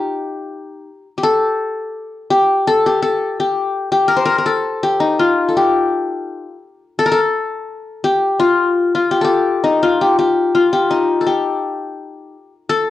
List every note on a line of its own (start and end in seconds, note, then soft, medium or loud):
0.00 0.88 D#4 medium
0.00 0.54 F4 medium
0.00 1.07 G4 medium
1.18 2.30 G4 medium
1.23 2.40 A4 medium
2.30 2.86 G4 medium
2.67 3.02 A4 medium
2.86 3.39 G4 medium
3.02 4.14 A4 medium
3.40 3.91 G4 medium
3.92 4.83 G4 medium
4.08 4.25 A#4 medium
4.17 5.22 C5 medium
4.25 4.38 A#4 loud
4.38 4.52 A#4 medium
4.46 5.48 A4 medium
4.83 5.56 G4 medium
5.00 6.44 D#4 medium
5.19 6.54 F4 medium
5.49 6.66 A4 soft
5.57 6.82 G4 medium
6.99 7.11 A4 medium
7.06 7.18 A#4 medium
7.12 8.29 A4 loud
8.04 9.11 G4 medium
8.40 8.94 F4 medium
8.95 9.82 F4 medium
9.11 9.24 G4 medium
9.21 10.01 G4 medium
9.21 10.38 A4 medium
9.64 10.90 D#4 medium
9.83 10.54 F4 medium
10.01 10.18 G4 medium
10.19 10.72 G4 medium
10.55 11.89 F4 medium
10.73 11.26 G4 medium
10.90 12.35 D#4 medium
11.21 12.38 A4 soft
11.27 12.52 G4 medium
12.69 12.90 A4 loud